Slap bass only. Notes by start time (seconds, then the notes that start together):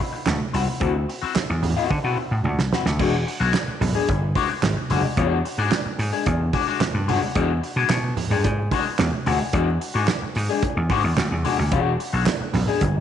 0.27 D2
0.54 C2
0.81 D2
1.23 muted slap bass stroke
1.36 muted slap bass stroke
1.50 E2
1.90 D3
2.04 B2
2.31 A2
2.45 D2
2.58 C2
2.86 D2
2.99 E1
3.40 B1
3.68 muted slap bass stroke
3.81 B1
4.09 G1
4.63 G#1
4.90 F#1
5.17 E2
5.58 G#2
5.85 muted slap bass stroke
5.99 G#2
6.26 E2
6.80 muted slap bass stroke
6.94 G2
7.35 E2
7.76 B2
7.90 B2
8.30 G2
8.45 G#2
8.99 E2
9.27 D2
9.53 E2
9.95 G#2
10.22 muted slap bass stroke
10.36 G#2
10.77 E2
10.90 G#2
11.04 E2
11.17 D2
11.31 E2
11.59 D2
11.72 E1
12.13 B1
12.41 muted slap bass stroke
12.54 B1
12.81 G1